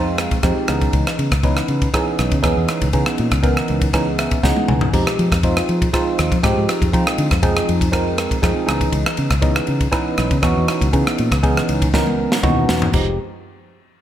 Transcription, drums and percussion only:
0.18 cross-stick medium
0.18 ride medium
0.31 kick medium
0.31 ride medium
0.43 kick loud
0.43 cross-stick medium
0.43 ride medium
0.68 cross-stick medium
0.68 ride medium
0.81 kick medium
0.81 ride medium
0.93 kick medium
0.93 ride medium
1.07 cross-stick medium
1.19 ride medium
1.31 kick medium
1.31 cross-stick medium
1.31 ride medium
1.43 kick loud
1.43 ride medium
1.57 cross-stick medium
1.68 ride soft
1.82 kick medium
1.82 ride medium
1.94 kick medium
1.94 cross-stick medium
1.94 ride medium
2.19 cross-stick medium
2.19 ride medium
2.31 kick medium
2.31 ride medium
2.43 kick loud
2.43 cross-stick medium
2.43 ride medium
2.68 cross-stick medium
2.68 ride medium
2.81 kick medium
2.81 ride medium
2.93 kick medium
2.93 ride medium
3.06 cross-stick medium
3.18 ride medium
3.31 kick medium
3.31 cross-stick medium
3.31 ride medium
3.43 kick loud
3.43 ride medium
3.57 cross-stick medium
3.68 ride medium
3.81 kick medium
3.81 ride medium
3.93 kick medium
3.93 cross-stick medium
3.93 ride medium
4.18 cross-stick medium
4.18 ride medium
4.31 kick medium
4.31 ride medium
4.43 kick loud
4.43 snare medium
4.56 high tom medium
4.68 mid tom medium
4.81 floor tom medium
4.93 kick medium
4.93 ride medium
4.93 splash medium
5.07 cross-stick medium
5.19 ride medium
5.32 kick medium
5.32 cross-stick medium
5.32 ride medium
5.43 kick medium
5.43 ride medium
5.57 cross-stick medium
5.69 ride medium
5.82 kick medium
5.82 ride medium
5.94 kick medium
5.94 cross-stick medium
5.94 ride medium
6.19 cross-stick medium
6.19 ride medium
6.32 kick medium
6.32 ride medium
6.43 kick medium
6.43 cross-stick medium
6.43 ride medium
6.69 cross-stick medium
6.69 ride medium
6.82 kick medium
6.82 ride medium
6.93 kick medium
6.93 ride medium
7.07 cross-stick medium
7.18 ride medium
7.31 kick medium
7.31 cross-stick medium
7.31 ride medium
7.43 kick loud
7.43 ride medium
7.57 cross-stick medium
7.69 ride medium
7.81 kick medium
7.81 ride medium
7.93 kick medium
7.93 cross-stick medium
7.93 ride medium
8.18 cross-stick medium
8.18 ride medium
8.31 kick medium
8.31 ride medium
8.43 kick medium
8.43 cross-stick medium
8.43 ride medium
8.68 cross-stick medium
8.68 ride medium
8.81 kick medium
8.81 ride medium
8.92 kick medium
8.92 ride medium
9.06 cross-stick medium
9.17 ride medium
9.30 kick medium
9.30 cross-stick medium
9.30 ride medium
9.42 kick loud
9.42 ride medium
9.56 cross-stick medium
9.67 ride medium
9.81 kick medium
9.81 ride medium
9.92 kick medium
9.92 cross-stick medium
9.92 ride medium
10.17 cross-stick medium
10.17 ride medium
10.31 kick medium
10.31 ride medium
10.43 kick loud
10.43 cross-stick medium
10.43 ride soft
10.68 cross-stick medium
10.68 ride medium
10.81 kick medium
10.81 ride medium
10.93 kick medium
10.93 ride medium
11.07 cross-stick medium
11.18 ride medium
11.32 kick medium
11.32 cross-stick medium
11.32 ride medium
11.43 kick loud
11.43 ride medium
11.57 cross-stick medium
11.69 ride medium
11.82 kick medium
11.82 ride medium
11.94 kick medium
11.94 snare medium
12.07 high tom medium
12.32 snare medium
12.43 kick loud
12.43 mid tom medium
12.69 snare medium
12.82 floor tom medium
12.93 kick loud
12.93 crash medium

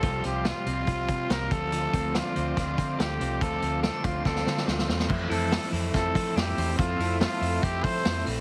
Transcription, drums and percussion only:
0.02 kick loud
0.02 closed hi-hat medium
0.24 closed hi-hat medium
0.45 snare loud
0.45 closed hi-hat medium
0.66 closed hi-hat medium
0.87 kick medium
0.87 closed hi-hat medium
1.08 kick medium
1.08 closed hi-hat medium
1.30 snare loud
1.30 closed hi-hat medium
1.51 kick medium
1.51 closed hi-hat medium
1.72 closed hi-hat medium
1.94 kick medium
1.94 closed hi-hat medium
2.15 snare loud
2.15 closed hi-hat medium
2.36 closed hi-hat medium
2.57 kick medium
2.57 snare soft
2.57 closed hi-hat medium
2.78 kick medium
2.78 closed hi-hat medium
3.00 snare loud
3.00 closed hi-hat medium
3.21 closed hi-hat medium
3.41 kick loud
3.41 closed hi-hat medium
3.62 closed hi-hat medium
3.83 snare loud
3.83 closed hi-hat medium
4.04 kick loud
4.04 closed hi-hat medium
4.25 kick medium
4.25 snare soft
4.36 snare medium
4.47 snare medium
4.57 snare medium
4.68 snare medium
4.79 snare medium
4.89 snare medium
5.00 snare medium
5.10 kick loud
5.10 crash loud
5.31 hi-hat pedal medium
5.31 open hi-hat medium
5.52 snare loud
5.52 hi-hat pedal medium
5.52 open hi-hat medium
5.74 hi-hat pedal medium
5.74 open hi-hat medium
5.94 kick medium
5.94 snare soft
5.94 hi-hat pedal medium
5.94 open hi-hat medium
6.15 kick medium
6.15 hi-hat pedal medium
6.15 open hi-hat medium
6.37 snare loud
6.37 hi-hat pedal medium
6.37 open hi-hat medium
6.58 hi-hat pedal medium
6.58 open hi-hat medium
6.79 kick loud
6.79 hi-hat pedal medium
6.79 open hi-hat loud
7.00 hi-hat pedal medium
7.00 open hi-hat medium
7.21 snare loud
7.21 hi-hat pedal medium
7.21 open hi-hat medium
7.42 hi-hat pedal medium
7.42 open hi-hat medium
7.63 kick medium
7.63 hi-hat pedal medium
7.63 open hi-hat medium
7.84 kick medium
7.84 hi-hat pedal medium
7.84 open hi-hat medium
8.05 snare loud
8.05 hi-hat pedal medium
8.05 open hi-hat medium
8.26 hi-hat pedal medium
8.26 open hi-hat medium

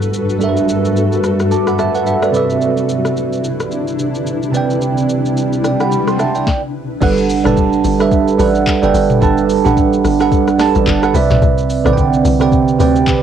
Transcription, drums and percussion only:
0.02 shaker soft
0.14 shaker medium
0.30 shaker soft
0.41 shaker medium
0.57 shaker medium
0.69 shaker medium
0.85 shaker medium
0.97 shaker medium
1.12 shaker soft
1.24 cross-stick medium
1.24 shaker loud
1.40 cross-stick medium
1.40 shaker medium
1.51 shaker medium
1.67 cross-stick medium
1.67 shaker soft
1.79 cross-stick medium
1.79 shaker medium
1.95 shaker soft
2.06 shaker medium
2.22 cross-stick loud
2.22 shaker medium
2.34 shaker medium
2.50 shaker soft
2.61 shaker medium
2.77 shaker medium
2.89 shaker loud
3.05 cross-stick medium
3.05 shaker medium
3.17 shaker medium
3.32 shaker soft
3.44 shaker loud
3.60 cross-stick medium
3.60 shaker medium
3.71 shaker medium
3.87 shaker soft
3.99 shaker medium
4.15 shaker soft
4.27 shaker medium
4.43 shaker soft
4.54 shaker medium
4.70 shaker soft
4.82 shaker medium
4.97 shaker medium
5.09 shaker loud
5.25 shaker medium
5.37 shaker medium
5.53 shaker soft
5.64 cross-stick medium
5.64 shaker loud
5.80 cross-stick medium
5.80 shaker medium
5.92 shaker medium
6.07 cross-stick medium
6.07 shaker soft
6.19 cross-stick medium
6.19 shaker medium
6.35 shaker soft
6.47 kick loud
6.47 snare medium
7.02 kick loud
7.02 crash loud
7.02 shaker medium
7.18 shaker medium
7.30 open hi-hat medium
7.30 shaker loud
7.45 cross-stick loud
7.45 mid tom medium
7.45 shaker medium
7.57 kick medium
7.57 shaker medium
7.73 shaker soft
7.84 open hi-hat medium
7.84 shaker loud
8.00 cross-stick loud
8.00 shaker medium
8.12 kick loud
8.12 shaker medium
8.28 shaker medium
8.39 open hi-hat medium
8.39 shaker medium
8.55 shaker medium
8.67 kick medium
8.67 clap loud
8.67 shaker medium
8.83 shaker medium
8.95 open hi-hat medium
8.95 shaker loud
9.10 mid tom loud
9.10 shaker medium
9.22 kick loud
9.22 shaker medium
9.38 shaker medium
9.50 open hi-hat medium
9.50 shaker loud
9.65 mid tom medium
9.65 shaker medium
9.77 kick medium
9.77 shaker medium
9.93 shaker soft
10.05 cross-stick medium
10.05 open hi-hat medium
10.05 shaker loud
10.20 cross-stick medium
10.20 shaker medium
10.32 kick loud
10.32 shaker medium
10.48 cross-stick medium
10.48 shaker medium
10.59 cross-stick loud
10.59 snare medium
10.59 open hi-hat medium
10.59 shaker medium
10.75 shaker medium
10.87 kick medium
10.87 clap loud
10.87 shaker medium
11.03 cross-stick loud
11.03 shaker medium
11.15 open hi-hat medium
11.15 shaker loud
11.30 snare medium
11.30 mid tom loud
11.30 shaker medium
11.42 kick loud
11.42 shaker medium
11.58 shaker medium
11.70 open hi-hat medium
11.70 shaker loud
11.86 cross-stick loud
11.86 mid tom medium
11.86 shaker medium
11.97 kick loud
11.97 shaker medium
12.13 shaker soft
12.25 open hi-hat medium
12.25 shaker loud
12.41 cross-stick loud
12.41 shaker medium
12.52 kick loud
12.52 shaker medium
12.68 shaker medium
12.80 open hi-hat medium
12.80 shaker medium
12.95 shaker soft
13.07 kick medium
13.07 clap loud
13.07 shaker medium

